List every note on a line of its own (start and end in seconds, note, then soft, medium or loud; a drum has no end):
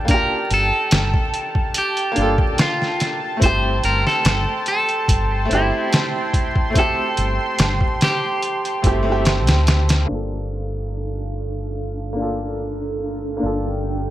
0.00 0.05 A#3 medium
0.00 0.08 D4 medium
0.00 0.11 F4 medium
0.00 2.22 A4 medium
0.00 3.39 G5 medium
0.00 10.05 A5 medium
0.05 2.10 A#3 medium
0.05 2.12 D4 medium
0.05 kick loud
0.05 closed hi-hat medium
0.11 2.14 F4 medium
0.11 2.15 G4 medium
0.11 0.53 A#4 loud
0.51 0.70 G1 medium
0.51 1.78 A4 loud
0.51 closed hi-hat medium
0.91 1.12 G1 medium
0.91 snare loud
0.91 closed hi-hat medium
1.14 kick loud
1.34 closed hi-hat medium
1.55 kick medium
1.74 2.63 G4 loud
1.74 closed hi-hat medium
1.97 closed hi-hat soft
2.12 3.35 A#3 medium
2.12 3.37 D4 medium
2.16 2.37 G1 medium
2.16 3.38 F4 medium
2.16 closed hi-hat medium
2.22 3.40 A4 medium
2.38 kick medium
2.58 3.20 F4 loud
2.58 snare loud
2.58 closed hi-hat medium
2.82 snare soft
3.00 snare soft
3.00 closed hi-hat medium
3.37 5.43 A3 medium
3.37 5.45 C4 medium
3.37 10.04 C6 loud
3.41 3.79 G1 medium
3.41 5.46 E4 medium
3.41 3.82 C5 loud
3.41 10.04 G5 medium
3.41 kick loud
3.41 closed hi-hat medium
3.46 5.48 G4 medium
3.84 4.03 G1 medium
3.84 4.07 A#4 loud
3.84 closed hi-hat medium
4.07 4.67 A4 loud
4.07 snare soft
4.25 4.45 G1 loud
4.25 snare loud
4.25 closed hi-hat medium
4.66 5.54 A4 loud
4.66 closed hi-hat medium
4.89 closed hi-hat soft
5.08 5.46 G1 medium
5.08 kick loud
5.08 closed hi-hat medium
5.45 6.68 A3 medium
5.45 6.70 C4 medium
5.51 5.70 G1 medium
5.51 6.72 E4 medium
5.51 6.80 E4 medium
5.51 closed hi-hat medium
5.55 6.73 G4 medium
5.93 snare loud
5.93 closed hi-hat medium
6.34 kick loud
6.34 closed hi-hat medium
6.55 kick medium
6.70 8.77 A3 medium
6.70 8.78 C4 medium
6.75 8.80 E4 medium
6.75 8.03 A4 loud
6.75 kick loud
6.75 closed hi-hat medium
6.79 8.81 G4 medium
7.17 7.37 G1 medium
7.17 closed hi-hat medium
7.59 7.79 G1 loud
7.59 snare loud
7.59 closed hi-hat medium
7.81 kick loud
8.01 9.65 G4 medium
8.01 snare loud
8.01 closed hi-hat medium
8.42 closed hi-hat medium
8.65 closed hi-hat soft
8.82 9.48 G1 medium
8.82 9.00 A3 medium
8.82 9.01 C4 medium
8.82 9.01 E4 medium
8.82 kick loud
8.82 closed hi-hat medium
8.87 9.02 G4 medium
9.03 10.03 A3 medium
9.03 10.04 C4 medium
9.09 10.06 E4 medium
9.09 10.07 G4 medium
9.25 snare loud
9.25 closed hi-hat medium
9.47 10.05 D2 medium
9.47 snare loud
9.47 closed hi-hat medium
9.67 snare loud
9.67 closed hi-hat medium
9.89 snare loud
9.89 closed hi-hat medium
10.05 12.11 A#3 medium
10.05 12.12 D4 medium
10.05 14.10 A4 medium
10.05 13.39 F5 medium
10.10 13.39 G1 medium
10.10 14.10 D4 medium
10.10 12.14 F4 medium
10.14 12.15 A4 medium
12.13 13.35 A#3 medium
12.13 13.37 D4 medium
12.19 13.38 F4 medium
12.19 13.40 A4 medium
13.37 14.10 A#3 medium
13.37 14.10 D4 medium
13.43 14.10 G1 medium
13.43 14.10 F4 medium
13.43 14.10 A4 medium
13.43 14.10 G5 medium